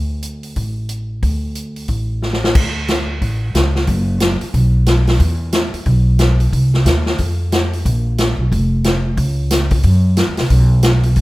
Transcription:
0.00 0.53 D2 medium
0.23 closed hi-hat medium
0.43 open hi-hat soft
0.56 1.19 A1 medium
0.56 kick soft
0.56 open hi-hat soft
0.89 closed hi-hat soft
1.23 1.86 D2 medium
1.23 kick soft
1.23 open hi-hat soft
1.55 closed hi-hat soft
1.76 open hi-hat soft
1.88 2.52 A1 medium
1.88 kick soft
1.88 open hi-hat soft
2.22 snare soft
2.33 snare medium
2.44 snare medium
2.55 3.18 D2 medium
2.55 kick medium
2.55 crash medium
2.88 snare medium
2.88 closed hi-hat medium
3.22 3.52 A1 medium
3.22 kick soft
3.22 open hi-hat soft
3.54 3.85 C#2 medium
3.54 snare medium
3.54 closed hi-hat medium
3.75 snare soft
3.87 4.38 F#1 medium
3.87 kick soft
3.87 open hi-hat soft
4.20 snare medium
4.20 closed hi-hat medium
4.41 muted upright bass stroke soft
4.41 open hi-hat soft
4.54 5.17 B1 medium
4.54 kick soft
4.54 open hi-hat soft
4.86 snare medium
4.86 closed hi-hat medium
5.07 snare medium
5.07 open hi-hat soft
5.20 5.70 E2 loud
5.20 kick soft
5.20 open hi-hat soft
5.52 snare medium
5.52 closed hi-hat medium
5.73 muted upright bass stroke soft
5.73 open hi-hat soft
5.86 6.49 B1 medium
5.86 kick soft
5.86 open hi-hat soft
6.19 snare medium
6.19 closed hi-hat medium
6.40 open hi-hat soft
6.53 6.84 C2 medium
6.53 kick soft
6.53 open hi-hat medium
6.74 snare soft
6.85 7.16 D#2 medium
6.85 snare medium
6.85 closed hi-hat medium
7.06 snare medium
7.18 7.82 F2 medium
7.18 kick soft
7.18 open hi-hat soft
7.52 snare medium
7.52 closed hi-hat medium
7.73 open hi-hat soft
7.86 8.35 A#1 medium
7.86 kick soft
7.86 open hi-hat medium
8.18 snare medium
8.18 closed hi-hat medium
8.38 8.50 B1 medium
8.52 9.15 F1 medium
8.52 kick soft
8.52 open hi-hat soft
8.84 snare medium
8.84 closed hi-hat medium
9.17 9.80 C#2 loud
9.17 kick soft
9.17 open hi-hat soft
9.51 snare medium
9.51 closed hi-hat medium
9.71 kick medium
9.71 open hi-hat soft
9.83 10.25 F#2 medium
9.83 kick soft
9.83 open hi-hat medium
10.17 snare medium
10.17 closed hi-hat medium
10.28 10.38 E2 medium
10.37 10.49 C2 medium
10.37 snare medium
10.37 open hi-hat soft
10.50 11.13 B1 medium
10.50 kick soft
10.50 open hi-hat medium
10.83 snare medium
10.83 closed hi-hat medium
11.03 open hi-hat soft
11.16 11.21 F#1 medium
11.16 kick soft
11.16 open hi-hat soft

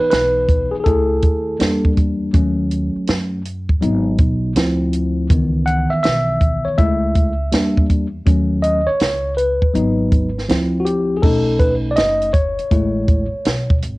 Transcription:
0.00 0.82 E3 medium
0.00 0.82 B3 soft
0.00 0.82 D#4 medium
0.10 0.70 B1 medium
0.10 0.74 B4 loud
0.10 snare loud
0.10 closed hi-hat medium
0.49 kick loud
0.49 closed hi-hat medium
0.71 0.75 G#4 medium
0.71 muted upright bass stroke soft
0.80 0.84 G#4 medium
0.80 1.92 A4 medium
0.85 1.21 C#2 loud
0.85 1.56 A3 medium
0.85 1.56 E4 medium
0.85 1.56 G#4 medium
0.85 kick medium
0.85 closed hi-hat medium
1.22 1.58 D#2 medium
1.22 kick medium
1.22 closed hi-hat medium
1.59 2.31 E2 medium
1.59 2.30 G3 medium
1.59 2.30 A#3 soft
1.59 2.31 D4 medium
1.59 snare loud
1.59 closed hi-hat loud
1.85 kick medium
1.97 kick loud
1.97 closed hi-hat medium
2.33 2.93 D#2 loud
2.33 3.41 F#3 medium
2.33 3.41 A3 soft
2.33 3.41 C#4 medium
2.33 kick loud
2.33 closed hi-hat medium
2.71 closed hi-hat medium
2.96 muted upright bass stroke soft
3.07 3.79 F#2 medium
3.07 snare loud
3.07 closed hi-hat medium
3.45 closed hi-hat medium
3.69 kick medium
3.81 4.17 G#1 loud
3.81 4.52 F#3 medium
3.81 4.52 B3 medium
3.81 4.53 D#4 medium
3.81 closed hi-hat medium
4.18 4.54 B1 medium
4.18 kick loud
4.18 closed hi-hat medium
4.56 5.27 D2 loud
4.56 5.26 F3 medium
4.56 5.27 C4 medium
4.56 5.27 E4 medium
4.56 snare loud
4.56 closed hi-hat loud
4.93 closed hi-hat medium
5.29 5.89 C#2 loud
5.29 6.75 D#3 medium
5.29 6.74 E3 medium
5.29 6.74 B3 soft
5.29 kick loud
5.29 closed hi-hat loud
5.66 5.92 F#5 loud
5.66 closed hi-hat medium
5.90 6.02 E5 medium
5.90 muted upright bass stroke soft
6.03 6.63 B1 medium
6.03 6.67 E5 loud
6.03 snare loud
6.03 closed hi-hat medium
6.41 kick loud
6.41 closed hi-hat medium
6.65 6.78 C#5 medium
6.65 muted upright bass stroke soft
6.78 7.49 C#2 loud
6.78 7.32 G#3 medium
6.78 7.32 A3 medium
6.78 7.32 E4 medium
6.78 7.85 E5 medium
6.78 kick medium
6.78 closed hi-hat medium
7.15 kick medium
7.15 closed hi-hat medium
7.52 8.23 E2 medium
7.52 8.06 G3 medium
7.52 8.06 A#3 medium
7.52 8.07 D4 medium
7.52 snare loud
7.52 closed hi-hat loud
7.77 kick loud
7.90 kick medium
7.90 closed hi-hat medium
8.26 8.85 D#2 medium
8.26 8.80 F#3 medium
8.26 8.80 A3 soft
8.26 8.81 C#4 medium
8.26 kick loud
8.26 closed hi-hat loud
8.63 8.88 D#5 medium
8.63 closed hi-hat medium
8.87 9.34 C#5 loud
8.87 muted upright bass stroke soft
9.00 9.59 C#2 medium
9.00 snare loud
9.00 closed hi-hat medium
9.37 10.44 B4 medium
9.37 closed hi-hat medium
9.62 muted upright bass stroke soft
9.62 kick medium
9.74 10.45 G#1 loud
9.74 10.28 F#3 medium
9.74 10.28 B3 soft
9.74 10.29 D#4 medium
9.74 closed hi-hat medium
10.12 kick medium
10.12 closed hi-hat medium
10.38 snare soft
10.48 11.20 D2 medium
10.48 11.19 F3 medium
10.48 11.19 C4 medium
10.48 11.19 E4 medium
10.48 snare loud
10.48 closed hi-hat loud
10.80 10.85 F#4 medium
10.85 11.15 G4 medium
10.85 closed hi-hat medium
11.17 11.22 G#4 medium
11.22 11.93 B1 medium
11.22 12.30 A3 medium
11.22 12.30 C#4 medium
11.22 12.31 D#4 medium
11.22 11.61 A4 medium
11.22 kick loud
11.22 crash medium
11.59 11.74 B4 medium
11.59 kick medium
11.59 closed hi-hat medium
11.91 11.96 D5 medium
11.96 12.56 F#1 medium
11.96 12.31 D#5 loud
11.96 snare loud
11.96 closed hi-hat medium
12.22 closed hi-hat soft
12.33 13.78 C#5 medium
12.33 kick loud
12.33 closed hi-hat medium
12.58 muted upright bass stroke soft
12.58 closed hi-hat soft
12.71 13.29 A1 loud
12.71 13.25 G#3 medium
12.71 13.25 A3 medium
12.71 13.25 E4 medium
12.71 kick medium
12.71 closed hi-hat medium
13.08 kick loud
13.08 closed hi-hat medium
13.33 muted upright bass stroke soft
13.45 13.80 B1 medium
13.45 snare loud
13.45 closed hi-hat loud
13.70 kick loud
13.82 13.98 G#1 medium
13.82 closed hi-hat medium

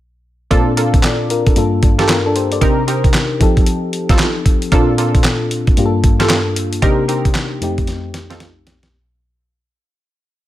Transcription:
0.51 1.54 A#2 medium
0.51 0.71 A#3 medium
0.51 1.54 C4 medium
0.51 0.72 D4 medium
0.51 1.03 D4 medium
0.51 0.72 F4 medium
0.51 1.03 F4 medium
0.51 0.72 A4 loud
0.51 1.04 A4 medium
0.51 kick medium
0.51 closed hi-hat medium
0.77 0.98 A#3 medium
0.77 0.98 D4 medium
0.77 0.98 F4 medium
0.77 0.98 A4 medium
0.77 closed hi-hat medium
0.94 kick medium
0.94 closed hi-hat soft
1.03 1.29 A4 medium
1.03 1.29 D5 medium
1.03 snare medium
1.03 clap medium
1.03 closed hi-hat medium
1.30 1.46 F4 medium
1.30 1.46 A#4 medium
1.30 closed hi-hat medium
1.47 1.56 D4 medium
1.47 1.57 A4 medium
1.47 kick medium
1.47 closed hi-hat soft
1.56 2.59 G2 medium
1.56 2.59 A#3 medium
1.56 1.82 D4 medium
1.56 1.83 F4 medium
1.56 1.82 A4 medium
1.56 closed hi-hat medium
1.83 1.99 D4 soft
1.83 1.99 A4 medium
1.83 kick medium
1.83 closed hi-hat medium
1.98 2.16 A#3 medium
1.98 2.09 D4 soft
1.98 2.16 F4 medium
1.98 2.16 G4 medium
1.98 2.09 G4 medium
1.98 2.16 A4 medium
1.98 snare medium
1.98 closed hi-hat soft
2.09 2.25 F4 medium
2.09 2.25 A#4 medium
2.09 snare loud
2.09 clap medium
2.09 closed hi-hat medium
2.26 2.35 D4 medium
2.26 2.35 A4 medium
2.36 2.51 G4 medium
2.36 2.51 C5 medium
2.36 closed hi-hat medium
2.52 2.77 A4 medium
2.52 2.77 D5 medium
2.52 closed hi-hat medium
2.61 3.41 C3 medium
2.61 2.82 C4 medium
2.61 3.41 D4 medium
2.61 2.82 D#4 medium
2.61 3.40 D#4 medium
2.61 2.82 G4 medium
2.61 3.40 G4 medium
2.61 2.82 A#4 loud
2.61 3.41 A#4 medium
2.61 kick loud
2.61 closed hi-hat medium
2.88 3.08 C4 medium
2.88 3.08 D#4 medium
2.88 3.08 G4 medium
2.88 3.09 A#4 medium
2.88 closed hi-hat medium
3.04 kick medium
3.04 closed hi-hat soft
3.14 snare loud
3.14 clap medium
3.14 closed hi-hat medium
3.40 4.69 F3 medium
3.40 4.69 C4 medium
3.40 4.70 D#4 medium
3.40 4.70 G4 medium
3.40 4.70 A4 medium
3.40 kick medium
3.40 closed hi-hat medium
3.57 kick medium
3.57 closed hi-hat soft
3.66 closed hi-hat medium
3.93 closed hi-hat medium
4.09 4.27 C4 medium
4.09 4.27 D#4 medium
4.09 4.27 F4 medium
4.09 4.27 A4 medium
4.09 kick medium
4.09 snare medium
4.09 closed hi-hat soft
4.19 snare loud
4.19 clap medium
4.19 closed hi-hat medium
4.46 kick medium
4.46 closed hi-hat medium
4.62 closed hi-hat medium
4.71 5.75 A#2 medium
4.71 4.93 A#3 medium
4.71 5.75 C4 medium
4.71 4.93 D4 medium
4.71 5.75 D4 medium
4.71 4.93 F4 medium
4.71 5.76 F4 medium
4.71 4.93 A4 loud
4.71 5.76 A4 medium
4.71 kick loud
4.71 closed hi-hat medium
4.98 5.19 A#3 medium
4.98 5.19 D4 medium
4.98 5.19 F4 medium
4.98 5.19 A4 medium
4.98 closed hi-hat medium
5.15 kick medium
5.15 closed hi-hat medium
5.24 snare loud
5.24 clap medium
5.24 closed hi-hat medium
5.51 closed hi-hat medium
5.67 kick medium
5.67 closed hi-hat soft
5.77 6.80 G2 medium
5.77 6.80 A#3 medium
5.77 6.81 D4 medium
5.77 6.81 F4 medium
5.77 5.86 G4 medium
5.77 closed hi-hat medium
5.86 6.85 A4 medium
6.04 kick medium
6.04 closed hi-hat medium
6.19 6.37 A#3 medium
6.19 6.37 F4 medium
6.19 6.37 G4 medium
6.19 6.37 A4 medium
6.19 snare medium
6.19 closed hi-hat soft
6.30 snare loud
6.30 clap medium
6.30 closed hi-hat medium
6.56 closed hi-hat medium
6.73 closed hi-hat medium
6.82 7.62 C3 medium
6.82 7.62 A#3 medium
6.82 7.03 C4 medium
6.82 7.62 D4 medium
6.82 7.03 D#4 medium
6.82 7.62 D#4 medium
6.82 7.03 G4 medium
6.82 7.62 G4 medium
6.82 7.03 A#4 loud
6.82 kick medium
6.82 closed hi-hat medium
7.08 7.29 C4 medium
7.08 7.29 D#4 medium
7.08 7.29 G4 medium
7.08 7.29 A#4 medium
7.08 closed hi-hat medium
7.25 kick medium
7.25 closed hi-hat soft
7.35 snare loud
7.35 clap medium
7.35 closed hi-hat medium
7.61 8.90 F2 medium
7.61 8.90 A3 medium
7.61 8.91 C4 medium
7.61 8.91 D#4 medium
7.61 8.91 G4 medium
7.61 closed hi-hat medium
7.78 kick medium
7.78 closed hi-hat soft
7.87 snare soft
7.87 closed hi-hat medium
8.14 snare medium
8.14 closed hi-hat medium
8.30 8.47 C4 medium
8.30 8.47 D#4 medium
8.30 8.47 F4 medium
8.30 8.48 A4 medium
8.30 snare medium
8.30 closed hi-hat soft
8.40 snare medium
8.40 closed hi-hat medium
8.67 snare medium
8.67 closed hi-hat medium
8.83 snare medium
8.83 closed hi-hat medium

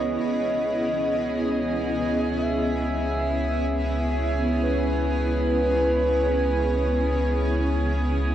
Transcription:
0.00 0.18 C#2 medium
0.00 0.25 B3 medium
0.00 8.35 B3 medium
0.00 8.35 C#4 medium
0.00 8.35 E4 medium
0.00 8.35 G#4 medium
0.00 8.35 C#5 medium
0.00 2.44 D#5 loud
0.00 0.26 B6 medium
0.23 8.35 C#2 medium
0.23 8.35 G#4 medium
0.23 8.35 G#5 medium
2.42 4.60 E5 loud
4.63 7.85 B4 loud

